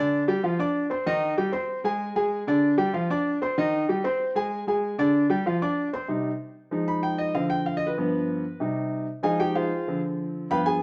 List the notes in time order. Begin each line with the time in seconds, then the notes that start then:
Already playing: D3 D4 D5
0.28 G3 G4 G5
0.43 F3 F4 F5
0.59 D4 D5 D6
0.90 C4 C5 C6
1.06 D#3 D#4 D#5
1.38 G3 G4 G5
1.52 C4 C5 C6
1.84 G#3 G#4 G#5
2.16 G#3 G#4 G#5
2.47 D3 D4 D5
2.78 G3 G4 G5
2.94 F3 F4 F5
3.10 D4 D5 D6
3.42 C4 C5 C6
3.58 D#3 D#4 D#5
3.89 G3 G4 G5
4.04 C4 C5 C6
4.35 G#3 G#4 G#5
4.67 G#3 G#4 G#5
4.98 D3 D4 D5
5.30 G3 G4 G5
5.46 F3 F4 F5
5.62 D4 D5 D6
5.93 C4 C5 C6
6.08 C3 G3 D#4
6.71 F3 G#3 D#4
6.88 B5
7.03 G5
7.18 D#5
7.34 D3 F3 C4 F5
7.50 G5
7.66 F5
7.77 D#5
7.87 B4
7.97 G2 F3 B3
8.60 C3 G3 D#4
9.23 F3 G#3 D#4 G#4 D#5 F5 G#5
9.40 G4 G5
9.55 F4 G#4 C5 F5
9.87 D3 F3 C4
10.50 G2 F3 B3 B4 F5 G5 B5
10.66 G#4 G#5